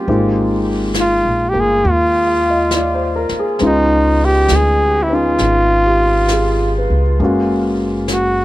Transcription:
0.07 1.20 G#1 medium
0.07 3.57 G#3 soft
0.07 1.52 A#3 soft
0.07 3.61 C4 soft
0.07 3.61 D#4 soft
0.07 3.61 F4 soft
0.07 brush sweep soft
0.94 snare soft
0.94 hi-hat pedal soft
1.01 1.51 F4 medium
1.25 1.52 A#1 medium
1.49 3.60 A#3 soft
1.49 1.62 G4 medium
1.55 1.81 G1 medium
1.61 1.92 G#4 medium
1.83 3.27 D#2 medium
1.83 brush sweep soft
1.91 3.34 F4 medium
2.28 2.55 F5 soft
2.50 2.80 D#5 soft
2.71 3.13 D5 soft
2.71 snare soft
2.71 hi-hat pedal medium
2.94 3.31 C5 soft
3.16 3.43 A#4 medium
3.29 muted upright bass stroke soft
3.29 snare soft
3.39 3.70 G#4 medium
3.59 4.46 C#2 medium
3.59 7.18 G#3 soft
3.59 5.07 B3 soft
3.59 5.09 C#4 soft
3.59 5.11 D#4 soft
3.59 brush sweep soft
3.59 snare soft
3.63 4.27 D#4 medium
3.63 7.21 F4 soft
4.25 4.57 G4 medium
4.48 5.35 D2 medium
4.48 snare soft
4.48 hi-hat pedal soft
4.56 5.04 G#4 medium
5.03 5.16 E4 medium
5.09 7.20 B3 soft
5.09 7.21 C#4 soft
5.09 7.22 D#4 soft
5.14 6.92 F4 medium
5.38 6.85 G#1 medium
5.38 brush sweep soft
5.38 snare soft
5.86 6.49 G4 soft
6.28 7.01 G#4 soft
6.28 snare soft
6.28 hi-hat pedal soft
6.78 7.40 B4 soft
6.90 7.18 C#2 soft
7.18 8.45 F#1 medium
7.18 8.45 G#3 soft
7.18 8.45 A#3 soft
7.18 8.45 C#4 soft
7.18 brush sweep soft
7.23 8.45 F#4 medium
7.23 8.45 F5 soft
8.08 snare soft
8.08 hi-hat pedal soft
8.13 8.45 F#4 medium

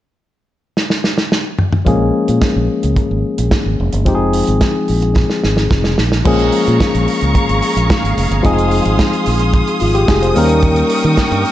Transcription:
0.77 snare medium
0.90 snare medium
1.04 snare medium
1.18 snare medium
1.32 snare medium
1.59 mid tom medium
1.73 mid tom medium
1.85 2.10 A#1 medium
1.85 4.02 F3 medium
1.85 4.02 G#3 medium
1.85 4.03 A#3 medium
1.85 4.03 C#4 medium
1.85 4.03 G#4 medium
1.85 kick loud
1.85 closed hi-hat medium
2.28 2.40 A#2 medium
2.28 closed hi-hat soft
2.42 kick loud
2.42 snare medium
2.42 closed hi-hat medium
2.56 2.68 A#1 medium
2.83 2.95 C#2 medium
2.83 closed hi-hat soft
2.96 kick loud
2.96 closed hi-hat soft
3.11 3.22 G#1 medium
3.38 3.50 A#1 medium
3.38 closed hi-hat medium
3.51 kick loud
3.51 snare loud
3.51 closed hi-hat medium
3.66 3.77 G#1 medium
3.80 3.91 F1 medium
3.93 4.06 G1 medium
3.93 closed hi-hat soft
4.05 4.41 F1 medium
4.05 5.94 F3 medium
4.05 5.94 G#3 medium
4.05 5.95 C4 medium
4.05 5.95 D#4 medium
4.05 4.14 G4 medium
4.05 kick loud
4.05 closed hi-hat medium
4.15 5.99 G#4 medium
4.33 open hi-hat medium
4.47 4.60 G#1 medium
4.47 closed hi-hat soft
4.61 kick loud
4.61 snare medium
4.61 closed hi-hat medium
4.88 5.24 A#1 medium
4.88 open hi-hat medium
5.02 closed hi-hat soft
5.16 kick loud
5.16 snare medium
5.30 snare medium
5.44 5.67 G#1 medium
5.44 snare medium
5.57 snare medium
5.71 5.94 F1 medium
5.71 kick loud
5.71 snare medium
5.84 snare medium
5.98 6.22 A#1 medium
5.98 snare medium
6.12 snare medium
6.24 6.49 A#1 medium
6.24 8.40 F3 medium
6.24 8.40 G#3 medium
6.24 8.41 A#3 medium
6.24 8.41 C#4 medium
6.24 10.32 G#4 medium
6.24 8.41 G#4 medium
6.24 10.32 F5 medium
6.24 8.42 A#5 medium
6.24 8.42 C#6 medium
6.24 kick loud
6.24 crash medium
6.39 closed hi-hat soft
6.52 open hi-hat medium
6.67 6.79 A#2 medium
6.67 closed hi-hat soft
6.80 kick loud
6.80 snare loud
6.80 closed hi-hat medium
6.95 7.06 A#1 medium
6.95 closed hi-hat soft
7.08 open hi-hat medium
7.21 7.34 C#2 medium
7.21 closed hi-hat soft
7.35 kick loud
7.35 closed hi-hat medium
7.49 7.61 G#1 medium
7.49 closed hi-hat soft
7.62 open hi-hat medium
7.77 7.88 A#1 medium
7.77 closed hi-hat soft
7.90 kick loud
7.90 snare loud
7.90 closed hi-hat medium
8.04 8.15 G#1 medium
8.04 closed hi-hat medium
8.17 8.29 F1 medium
8.17 open hi-hat medium
8.31 8.42 G1 medium
8.31 closed hi-hat soft
8.43 8.79 F1 medium
8.43 10.31 F3 medium
8.43 10.31 G#3 medium
8.43 10.32 C4 medium
8.43 10.32 D#4 medium
8.43 9.79 G#4 medium
8.43 10.34 C6 medium
8.43 11.52 D#6 medium
8.43 kick loud
8.43 closed hi-hat medium
8.58 closed hi-hat soft
8.71 open hi-hat medium
8.86 8.97 G#1 medium
8.86 closed hi-hat soft
8.99 kick loud
8.99 snare loud
8.99 closed hi-hat medium
9.13 closed hi-hat soft
9.26 9.62 A#1 medium
9.26 open hi-hat medium
9.40 closed hi-hat soft
9.54 kick loud
9.54 closed hi-hat medium
9.68 closed hi-hat soft
9.80 10.05 G#1 medium
9.80 9.94 F4 medium
9.80 open hi-hat medium
9.95 10.08 G4 medium
9.95 closed hi-hat soft
10.08 10.32 F1 medium
10.08 10.21 G#4 medium
10.08 kick loud
10.08 snare loud
10.08 closed hi-hat medium
10.22 10.48 C5 medium
10.22 closed hi-hat medium
10.35 10.82 D#2 loud
10.35 11.52 G3 medium
10.35 11.52 A#3 medium
10.35 11.52 C#4 medium
10.35 11.52 D#4 medium
10.35 11.52 A#4 medium
10.35 11.52 G5 medium
10.35 11.52 C#6 medium
10.35 open hi-hat medium
10.49 closed hi-hat soft
10.63 kick loud
10.63 closed hi-hat medium
10.76 closed hi-hat soft
10.90 open hi-hat medium
11.04 11.16 D#3 medium
11.04 closed hi-hat soft
11.17 kick medium
11.17 snare loud
11.17 closed hi-hat medium
11.31 11.43 G2 medium
11.31 closed hi-hat soft
11.45 open hi-hat medium

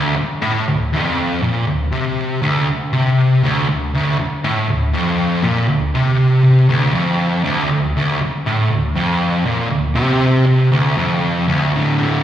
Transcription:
0.00 0.15 D2 loud
0.17 muted distorted electric guitar stroke medium
0.41 0.66 A2 loud
0.68 0.88 D2 medium
0.93 1.42 F2 loud
1.43 1.67 A#2 loud
1.67 1.88 D2 medium
1.92 2.41 C3 loud
2.42 2.67 D2 loud
2.93 3.42 C3 loud
3.43 3.68 D2 loud
3.69 3.89 D2 medium
3.94 4.18 D2 loud
4.19 muted distorted electric guitar stroke medium
4.44 4.68 A2 loud
4.69 4.89 D2 medium
4.93 5.43 F2 loud
5.43 5.68 A#2 loud
5.68 5.89 D2 medium
5.95 6.43 C3 loud
6.44 6.68 C3 loud
6.69 6.94 D2 loud
6.94 7.44 F2 loud
7.44 7.69 D2 loud
7.71 7.91 D2 medium
7.97 8.20 D2 loud
8.21 muted distorted electric guitar stroke medium
8.46 8.70 A2 loud
8.70 8.91 D2 medium
8.95 9.45 F2 loud
9.46 9.70 A#2 loud
9.70 9.91 D2 medium
9.95 10.45 C3 loud
10.46 10.71 C3 loud
10.72 10.96 D2 loud
10.98 11.47 F2 loud
11.48 11.72 D2 loud
11.73 12.23 D2 medium
11.73 12.00 A2 loud
11.73 11.97 D3 loud
11.98 12.23 A2 medium
11.98 12.23 D3 medium

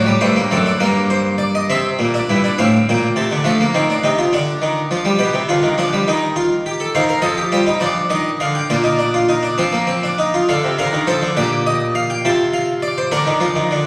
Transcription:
0.00 0.11 A2 medium
0.00 0.11 D5 medium
0.06 0.22 G3 medium
0.21 0.40 G2 medium
0.21 0.37 A3 medium
0.21 0.40 C5 medium
0.36 0.52 A#3 medium
0.51 0.70 F#2 soft
0.51 0.67 C4 medium
0.51 0.70 A4 medium
0.66 0.81 D4 medium
0.80 1.67 G2 medium
0.80 1.67 A#3 medium
0.80 0.99 A#4 medium
1.10 1.29 C5 medium
1.38 1.54 D5 medium
1.55 1.70 D#5 medium
1.70 1.88 C3 medium
1.70 2.13 C4 medium
1.70 2.55 E5 medium
1.99 2.17 A#2 medium
2.14 2.29 D4 medium
2.29 2.48 G2 medium
2.29 2.44 E4 medium
2.44 2.58 D4 medium
2.58 2.76 A2 medium
2.58 3.43 C4 medium
2.58 2.77 F5 medium
2.89 3.07 A#2 medium
2.89 3.07 G5 medium
3.16 3.31 C3 medium
3.16 3.35 A5 medium
3.31 3.45 D3 medium
3.44 3.63 F3 medium
3.44 3.59 A3 medium
3.61 3.74 A#3 medium
3.74 3.92 D#3 medium
3.74 3.89 C4 medium
3.90 4.03 D4 medium
4.03 4.21 C3 medium
4.03 4.17 D#4 medium
4.18 4.32 F4 medium
4.33 4.51 D3 medium
4.33 5.17 D4 medium
4.62 4.80 D#3 medium
4.91 5.05 F3 medium
5.05 5.19 G3 medium
5.19 5.33 B2 medium
5.19 5.37 G4 medium
5.34 5.48 C3 medium
5.49 5.63 D3 medium
5.49 5.67 F4 medium
5.63 5.77 D#3 medium
5.78 5.92 F3 medium
5.78 5.96 D4 medium
5.93 6.07 G3 medium
6.08 6.92 D#3 medium
6.08 6.26 D#4 medium
6.36 6.54 F4 medium
6.66 6.80 G4 medium
6.80 6.94 A4 medium
6.95 7.13 D#3 medium
6.95 7.09 C5 medium
6.95 7.13 F5 medium
7.09 7.23 A#4 medium
7.22 7.40 F3 medium
7.22 7.37 A4 medium
7.22 7.40 D#5 medium
7.37 7.52 G4 medium
7.52 7.70 G3 medium
7.52 7.66 F4 medium
7.52 7.70 C5 medium
7.66 7.81 D#4 medium
7.80 7.99 F3 medium
7.80 8.68 D4 medium
7.80 7.99 D5 medium
8.10 8.29 D#3 medium
8.10 8.29 D#5 medium
8.40 8.59 D3 medium
8.40 8.55 F5 medium
8.55 8.70 G5 medium
8.70 9.58 A#2 medium
8.70 8.85 F4 medium
8.70 9.58 D5 medium
8.84 8.99 D#4 medium
8.99 9.14 D4 medium
9.14 9.29 F4 medium
9.29 9.44 D#4 medium
9.43 9.59 D4 medium
9.58 10.47 F3 medium
9.58 9.74 C4 medium
9.58 10.47 F5 medium
9.72 9.88 A#3 medium
9.87 10.03 C4 medium
10.03 10.19 D4 medium
10.18 10.34 D#4 medium
10.34 10.49 F4 medium
10.49 10.64 D3 medium
10.49 10.68 A4 medium
10.49 10.68 F5 medium
10.64 10.79 C3 medium
10.79 10.94 D3 medium
10.79 10.97 A#4 medium
10.79 10.97 F5 medium
10.93 11.08 D#3 medium
11.07 11.22 F3 medium
11.07 11.26 A4 medium
11.07 11.26 C5 medium
11.22 11.37 D3 medium
11.37 12.22 A#2 medium
11.37 12.22 G4 medium
11.37 11.55 D5 medium
11.67 11.85 D#5 medium
11.95 12.10 F5 medium
12.10 12.25 G5 medium
12.25 13.10 C3 medium
12.25 13.10 F4 medium
12.25 12.44 A5 loud
12.54 12.72 F5 loud
12.83 12.97 D5 loud
12.98 13.12 C5 medium
13.12 13.26 D3 medium
13.12 13.87 D4 medium
13.12 13.87 A#4 loud
13.26 13.41 D#3 medium
13.40 13.56 F3 medium
13.56 13.71 D#3 medium
13.71 13.86 D3 medium

